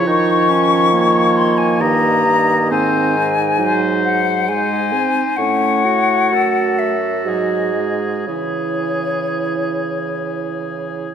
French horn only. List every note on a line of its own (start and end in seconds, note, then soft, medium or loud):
0.00 1.82 F3 medium
1.80 2.26 D#3 medium
2.26 3.62 D#3 medium
3.60 4.50 F#3 medium
4.49 4.94 G#3 medium
4.93 5.24 C4 medium
5.38 6.94 A3 medium
7.25 7.71 F#3 medium
7.75 8.30 G#3 medium
8.28 11.14 E3 soft